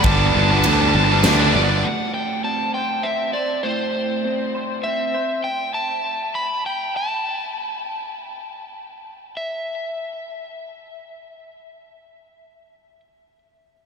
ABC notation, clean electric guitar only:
X:1
M:3/4
L:1/8
Q:1/4=98
K:Am
V:1 name="Clean electric guitar"
z6 | A,,2 C c C c | A,,2 C c C c | z6 |
z6 | z6 | z6 |]